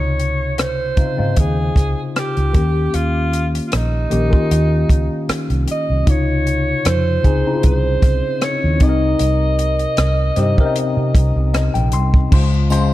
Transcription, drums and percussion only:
0.20 closed hi-hat medium
0.58 cross-stick loud
0.58 closed hi-hat medium
0.97 kick medium
0.97 closed hi-hat medium
1.36 kick medium
1.36 closed hi-hat medium
1.76 kick medium
1.76 closed hi-hat medium
2.16 cross-stick medium
2.16 closed hi-hat medium
2.37 closed hi-hat soft
2.54 kick medium
2.54 closed hi-hat medium
2.94 closed hi-hat medium
3.33 closed hi-hat medium
3.55 closed hi-hat medium
3.72 cross-stick loud
3.72 closed hi-hat medium
4.11 closed hi-hat medium
4.33 kick medium
4.51 closed hi-hat medium
4.89 kick medium
4.89 closed hi-hat medium
5.29 cross-stick loud
5.29 closed hi-hat medium
5.50 closed hi-hat soft
5.68 closed hi-hat medium
6.07 kick loud
6.07 closed hi-hat medium
6.47 closed hi-hat medium
6.85 cross-stick loud
6.85 closed hi-hat medium
7.24 kick medium
7.24 closed hi-hat medium
7.63 kick medium
7.63 closed hi-hat medium
8.02 kick medium
8.02 cross-stick soft
8.02 closed hi-hat medium
8.41 cross-stick loud
8.41 closed hi-hat medium
8.80 kick loud
8.80 closed hi-hat medium
9.19 closed hi-hat medium
9.59 closed hi-hat medium
9.79 closed hi-hat medium
9.97 cross-stick loud
9.97 closed hi-hat medium
10.36 closed hi-hat medium
10.58 kick medium
10.76 closed hi-hat medium
11.15 kick medium
11.15 cross-stick soft
11.15 closed hi-hat medium
11.54 cross-stick loud
11.54 closed hi-hat medium
11.75 closed hi-hat soft
11.92 closed hi-hat medium
12.14 kick medium
12.32 kick loud
12.32 crash loud
12.32 muted triangle soft
12.54 muted triangle soft
12.70 closed hi-hat medium
12.70 triangle medium

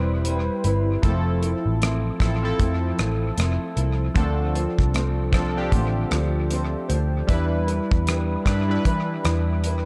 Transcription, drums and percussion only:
0.25 closed hi-hat medium
0.64 closed hi-hat soft
1.03 kick medium
1.03 closed hi-hat medium
1.43 closed hi-hat soft
1.82 cross-stick medium
1.82 closed hi-hat soft
2.20 kick medium
2.20 cross-stick medium
2.20 closed hi-hat soft
2.60 kick medium
2.60 closed hi-hat medium
2.99 cross-stick medium
2.99 closed hi-hat soft
3.38 cross-stick medium
3.38 closed hi-hat medium
3.77 closed hi-hat soft
4.16 kick loud
4.16 closed hi-hat medium
4.55 closed hi-hat soft
4.79 kick medium
4.94 cross-stick medium
4.94 closed hi-hat medium
5.33 kick medium
5.33 cross-stick medium
5.33 closed hi-hat soft
5.72 kick medium
5.72 closed hi-hat medium
6.11 cross-stick medium
6.11 closed hi-hat soft
6.51 closed hi-hat medium
6.90 closed hi-hat soft
7.29 kick medium
7.29 closed hi-hat medium
7.68 closed hi-hat soft
7.91 kick medium
8.07 cross-stick medium
8.07 closed hi-hat medium
8.46 kick medium
8.46 cross-stick medium
8.46 closed hi-hat medium
8.85 kick medium
8.85 closed hi-hat medium
9.25 cross-stick medium
9.25 closed hi-hat soft
9.64 closed hi-hat medium

